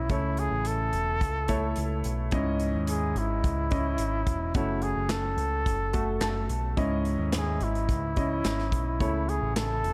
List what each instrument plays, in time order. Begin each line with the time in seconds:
Already playing: grand piano C#4 E4 D#5
0.09 picked electric bass C#2, grand piano C#3 A3 E4 C#5, trumpet E4, kick, closed hi-hat
0.37 trumpet G#4, closed hi-hat
0.51 picked electric bass A1
0.65 trumpet A4, closed hi-hat
0.93 picked electric bass E1, closed hi-hat
1.21 picked electric bass C#2, kick, closed hi-hat
1.48 grand piano A3 E4 C#5, kick, closed hi-hat
1.76 picked electric bass C#2, closed hi-hat
2.04 picked electric bass B1, closed hi-hat
2.31 picked electric bass C#2, grand piano G#2 C#4 E4 D#5, kick, closed hi-hat
2.60 closed hi-hat
2.74 picked electric bass D#2
2.87 trumpet G#4, closed hi-hat
3.15 picked electric bass G#1, trumpet E4, closed hi-hat
3.44 picked electric bass C#2, kick, closed hi-hat
3.71 grand piano C#4 E4 D#5, kick, closed hi-hat
3.98 picked electric bass G#1, closed hi-hat
4.26 picked electric bass E1, kick, closed hi-hat
4.54 picked electric bass F#1, grand piano C#3 A3 F#4 C#5, trumpet E4, kick, closed hi-hat
4.82 trumpet G#4, closed hi-hat
4.96 picked electric bass F#1
5.09 trumpet A4, snare, clap, closed hi-hat
5.37 picked electric bass C#2, closed hi-hat
5.66 picked electric bass F#1, kick, closed hi-hat
5.93 grand piano A3 F#4 A4, kick, closed hi-hat
6.21 picked electric bass F#1, grand piano A5, snare, clap, closed hi-hat
6.49 picked electric bass B1, closed hi-hat
6.77 picked electric bass C#2, grand piano G#2 C#4 E4 D#5, kick, closed hi-hat
7.05 closed hi-hat
7.19 picked electric bass D#2
7.32 trumpet G#4, snare, clap, closed hi-hat
7.60 picked electric bass G#1, trumpet E4, closed hi-hat
7.75 closed hi-hat
7.89 picked electric bass C#2, kick, closed hi-hat
8.16 grand piano C#4 E4 D#5, kick, closed hi-hat
8.44 picked electric bass G#1, snare, clap, closed hi-hat
8.59 snare
8.72 picked electric bass B1, kick, closed hi-hat
9.00 picked electric bass C#2, grand piano C#3 A3 E4 C#5, trumpet E4, kick, closed hi-hat
9.29 trumpet G#4, closed hi-hat
9.42 picked electric bass A1
9.56 trumpet A4, snare, clap, closed hi-hat
9.84 picked electric bass E1, closed hi-hat